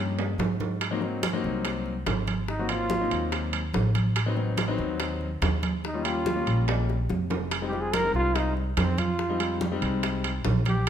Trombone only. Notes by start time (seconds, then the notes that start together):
2.50 D#4
2.70 F4
5.86 D#4
6.06 F4
7.67 G4
7.81 G#4
7.95 A#4
8.16 F4
8.37 D#4
8.57 G3
8.79 C4
8.99 F4
10.68 G4